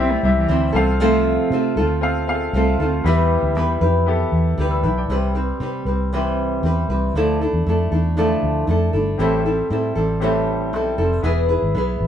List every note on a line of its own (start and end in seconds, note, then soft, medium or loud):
0.00 0.15 B1 medium
0.00 0.47 G3 soft
0.00 0.13 C4 medium
0.00 0.23 C4 medium
0.00 0.49 C4 soft
0.00 0.24 E4 medium
0.00 0.49 E4 medium
0.00 0.25 G4 medium
0.00 0.51 C5 medium
0.00 0.25 E5 medium
0.12 0.24 A3 medium
0.23 0.45 C2 medium
0.23 0.36 G3 medium
0.23 0.73 C4 medium
0.23 0.73 E4 medium
0.23 0.73 G4 medium
0.23 0.74 E5 medium
0.38 0.74 E3 medium
0.48 0.70 D2 medium
0.48 0.75 G3 medium
0.48 0.74 C4 medium
0.48 0.74 E4 medium
0.48 0.72 C5 medium
0.73 1.37 C2 loud
0.73 0.99 A3 soft
0.73 1.57 C4 medium
0.73 1.00 C4 soft
0.73 1.00 F4 medium
0.73 1.57 F4 medium
0.73 0.99 A4 medium
0.73 1.57 A4 medium
0.73 1.57 F5 medium
1.00 1.51 C3 medium
1.00 1.52 F3 medium
1.00 1.51 A3 medium
1.00 1.52 C4 medium
1.00 1.52 F4 medium
1.00 1.52 A4 medium
1.50 1.78 C3 loud
1.50 1.77 A3 medium
1.50 1.78 C4 medium
1.50 1.77 F4 medium
1.55 1.76 A4 medium
1.76 2.49 D2 medium
1.76 2.54 C4 medium
1.76 2.54 F4 medium
1.76 2.54 A4 medium
1.80 2.53 A3 medium
2.01 2.18 C4 medium
2.01 2.19 F4 medium
2.01 2.19 A4 medium
2.01 2.19 F5 medium
2.27 2.76 C4 medium
2.27 2.77 F4 medium
2.27 2.35 G#4 medium
2.27 2.77 F5 medium
2.34 2.80 A4 medium
2.53 2.74 C2 medium
2.53 2.79 A3 medium
2.53 2.80 C4 medium
2.53 2.80 F4 medium
2.53 2.79 A4 medium
2.79 3.00 D2 medium
2.79 3.06 C4 soft
2.79 3.06 F4 medium
2.79 3.05 A4 medium
2.83 3.06 A3 soft
3.04 3.36 E2 loud
3.04 5.10 E3 medium
3.04 3.55 G3 medium
3.04 3.69 B3 medium
3.04 3.70 E4 medium
3.04 3.56 E4 medium
3.04 3.70 G4 medium
3.04 3.57 G4 medium
3.04 3.58 B4 medium
3.04 3.70 E5 medium
3.43 3.56 D2 medium
3.55 3.77 E2 medium
3.55 3.81 G3 medium
3.55 3.82 E4 medium
3.55 3.82 G4 medium
3.55 3.80 B4 medium
3.81 4.23 F2 medium
3.81 4.59 E4 soft
3.81 4.60 G4 medium
3.81 4.61 B4 medium
4.06 4.23 B3 medium
4.06 4.23 E4 medium
4.06 4.24 G4 medium
4.06 4.24 A4 medium
4.32 4.53 E2 medium
4.58 4.85 D2 medium
4.58 4.83 G3 medium
4.58 4.84 E4 medium
4.58 4.84 G4 medium
4.58 4.82 B4 medium
4.71 4.83 B5 soft
4.71 4.83 E6 medium
4.83 5.04 B1 medium
4.83 5.10 E4 soft
4.83 5.10 G4 medium
4.83 5.09 B4 medium
4.83 4.96 E5 medium
4.83 4.96 B5 medium
4.98 5.22 D5 soft
4.98 5.21 G5 medium
5.09 5.51 C2 medium
5.09 5.35 C3 medium
5.09 5.35 E3 medium
5.09 5.35 G3 medium
5.09 5.36 C4 medium
5.09 5.35 G4 medium
5.09 5.34 B4 medium
5.35 5.59 G3 soft
5.35 5.60 C4 soft
5.35 5.61 G4 soft
5.35 5.60 B4 medium
5.60 5.81 C3 medium
5.60 5.86 G3 medium
5.60 5.86 C4 medium
5.60 5.87 G4 medium
5.60 5.85 B4 medium
5.85 6.59 C2 medium
5.85 6.13 C4 soft
5.85 6.13 G4 soft
5.85 6.12 B4 soft
5.89 6.12 G3 soft
6.13 6.63 C3 medium
6.13 7.16 E3 medium
6.13 6.62 G3 medium
6.13 6.63 C4 medium
6.13 6.64 G4 medium
6.13 6.64 B4 medium
6.63 6.84 E2 medium
6.63 6.89 G3 medium
6.63 6.89 C4 medium
6.63 6.90 G4 medium
6.63 6.89 B4 medium
6.89 7.10 C2 medium
6.89 7.16 G3 soft
6.89 7.16 C4 soft
6.89 7.15 G4 soft
6.89 7.15 B4 soft
7.14 7.46 D2 medium
7.14 7.40 D3 medium
7.14 7.41 F3 medium
7.14 7.41 A3 medium
7.14 7.41 D4 medium
7.14 7.41 E4 medium
7.14 7.40 A4 medium
7.42 7.65 A3 soft
7.42 7.67 D4 soft
7.42 7.67 E4 medium
7.42 7.66 A4 medium
7.53 7.63 E2 medium
7.66 7.87 F2 medium
7.66 7.92 A3 medium
7.66 7.92 D4 medium
7.66 7.92 E4 medium
7.66 7.91 A4 medium
7.92 8.33 E2 medium
7.92 8.17 A3 soft
7.92 8.17 D4 soft
7.92 8.18 E4 soft
7.92 8.17 A4 soft
8.17 8.68 D3 medium
8.17 8.68 F3 medium
8.17 8.67 A3 medium
8.17 8.67 D4 medium
8.17 8.69 E4 medium
8.17 8.70 A4 medium
8.43 8.64 D2 medium
8.67 8.89 F2 medium
8.67 8.93 A3 medium
8.67 8.94 D4 medium
8.67 8.93 E4 medium
8.67 8.92 A4 medium
8.93 9.14 G1 medium
8.93 9.20 A3 soft
8.93 9.20 D4 soft
8.93 9.19 E4 soft
8.93 9.19 A4 soft
9.18 9.61 A1 medium
9.18 9.45 A2 medium
9.18 9.45 E3 medium
9.18 9.45 G3 medium
9.18 9.84 C4 medium
9.18 9.45 C4 medium
9.18 9.45 E4 medium
9.18 9.84 G4 medium
9.18 9.85 A4 medium
9.18 9.44 A4 medium
9.18 9.85 E5 medium
9.46 9.69 G3 soft
9.46 9.70 C4 soft
9.46 9.71 E4 medium
9.46 9.71 A4 medium
9.70 9.91 A2 loud
9.70 9.96 G3 medium
9.70 9.96 C4 medium
9.70 9.96 E4 medium
9.70 9.94 A4 medium
9.95 10.73 A1 medium
9.95 10.22 G3 soft
9.95 10.22 C4 soft
9.95 10.22 E4 soft
9.95 10.21 A4 soft
10.20 10.73 A2 medium
10.20 11.23 E3 medium
10.20 10.72 G3 medium
10.20 10.86 C4 medium
10.20 10.73 C4 medium
10.20 10.74 E4 medium
10.20 10.86 G4 medium
10.20 10.87 A4 medium
10.20 10.74 A4 medium
10.20 10.87 C5 medium
10.73 10.94 B1 medium
10.73 10.99 G3 medium
10.73 10.99 C4 medium
10.73 10.98 E4 medium
10.73 10.97 A4 medium
10.98 11.19 F1 medium
10.98 11.24 G3 soft
10.98 11.24 C4 soft
10.98 11.23 E4 medium
10.98 11.24 A4 medium
11.22 11.55 E1 loud
11.22 11.50 E3 medium
11.22 11.89 B3 medium
11.22 11.50 B3 medium
11.22 11.89 E4 medium
11.22 11.50 E4 medium
11.22 11.89 G#4 medium
11.22 11.49 G#4 medium
11.22 11.48 B4 medium
11.22 11.90 E5 medium
11.49 11.75 E4 soft
11.49 11.76 G#4 soft
11.49 11.75 B4 medium
11.62 11.73 G#1 medium
11.75 11.96 B1 medium
11.75 12.07 B3 medium
11.75 12.07 E4 medium
11.75 12.07 G#4 medium
11.75 12.07 B4 medium
12.01 12.07 A1 medium